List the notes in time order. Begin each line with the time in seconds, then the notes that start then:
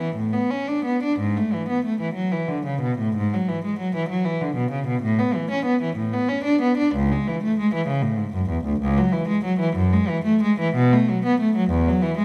0.00 E3
0.16 A2
0.33 B3
0.50 C#4
0.68 D4
0.85 B3
1.03 D4
1.19 G#2
1.37 A3
1.53 E3
1.69 B3
1.85 A3
2.01 E3
2.14 F#3
2.32 E3
2.48 D3
2.66 C#3
2.82 B2
2.99 A2
3.16 G#2
3.34 F#3
3.49 E3
3.65 G#3
3.79 F#3
3.96 E3
4.09 F#3
4.25 E3
4.41 D3
4.56 B2
4.71 C#3
4.87 B2
5.03 A2
5.19 B3
5.35 E3
5.51 C#4
5.66 B3
5.82 E3
5.97 A2
6.13 B3
6.29 C#4
6.44 D4
6.62 B3
6.78 D4
6.95 C#2
7.12 G#3
7.28 E3
7.43 A3
7.59 G#3
7.74 E3
7.87 C#3
8.03 A2
8.17 G#2
8.34 F#2
8.50 E2
8.65 D2
8.81 C#2
8.97 F#3
9.13 E3
9.29 G#3
9.44 F#3
9.60 E3
9.76 F#2
9.93 G#3
10.09 E3
10.25 A3
10.43 G#3
10.60 E3
10.75 B2
10.93 A3
11.10 F#3
11.25 B3
11.40 A3
11.56 F#3
11.70 E2
11.88 F#3
12.02 E3
12.18 G#3